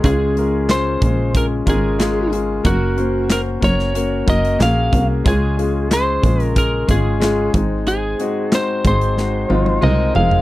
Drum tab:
HH |x-x-x-x-x-x-x-x-|x-x-x-x-x-xxx-x-|x-x-x-xxx-x-x-x-|x-x-x-xx--------|
CP |----x-------x---|----x-------x---|----x-------x---|----x-----------|
SD |----o-------o---|----o--o----o---|----o-------o---|----o---o-------|
T1 |----------------|----------------|----------------|----------oo----|
T2 |----------------|----------------|----------------|------------o---|
FT |----------------|----------------|----------------|--------------oo|
BD |o-----o-o-o-----|o-----o---o---o-|o-----o-o-o---o-|------o---------|